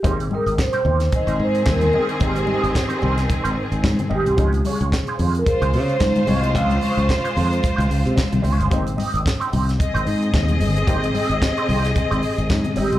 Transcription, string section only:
X:1
M:4/4
L:1/8
Q:"Swing 16ths" 1/4=111
K:Ab
V:1 name="String section"
z4 [E,CA]4- | [E,CA]8 | z4 [A,Fc]4- | [A,Fc]8 |
z4 [CAe]4- | [CAe]8 |]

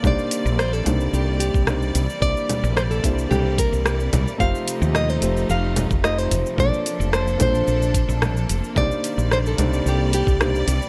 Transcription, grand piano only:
X:1
M:4/4
L:1/16
Q:1/4=110
K:Cdor
V:1 name="Grand piano"
[B,DEGc]6 [B,DEGc]6 [B,DEGc] z3 | [B,D=EGc]6 [B,DEGc]8- [B,DEGc]2 | [A,EFGc]6 [A,EFGc]6 [A,EFGc] z3 | [B,DFAc]6 [B,DFAc]8- [B,DFAc]2 |
[B,DEGc]6 [B,DEGc]6 [B,DEGc] z3 |]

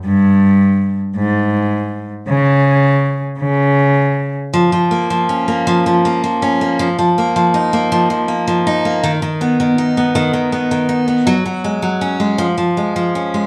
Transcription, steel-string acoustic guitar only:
X:1
M:6/8
L:1/16
Q:3/8=54
K:A#phr
V:1 name="Steel-string acoustic guitar" clef=bass
z12 | z12 | E, E, A, E, C A, E, E, A, E, C A, | E, E, A, E, D A, E, E, A, E, D A, |
D, D, B, D, D B, D, D, B, D, D B, | F, F, G, F, C G, E, E, G, E, C G, |]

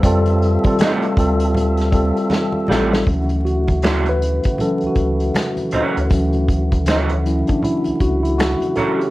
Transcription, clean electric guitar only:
X:1
M:4/4
L:1/16
Q:"Swing 16ths" 1/4=79
K:D
V:1 name="Clean electric guitar"
z4 [G,A,E] z8 z [G,A,E] z | z4 [F,CE] z8 z [F,CE] z | z4 [F,CE] z8 z [F,CE] z |]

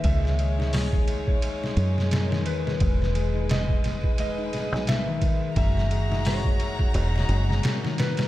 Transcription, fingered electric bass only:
X:1
M:4/4
L:1/16
Q:"Swing 16ths" 1/4=87
K:C#dor
V:1 name="Fingered electric bass" clef=bass
C,,8- C,,2 F,,4 E,,2 | E,,,8- E,,,3 B,,,4- B,,, | F,,,8 E,,,2 F,,,2 z4 |]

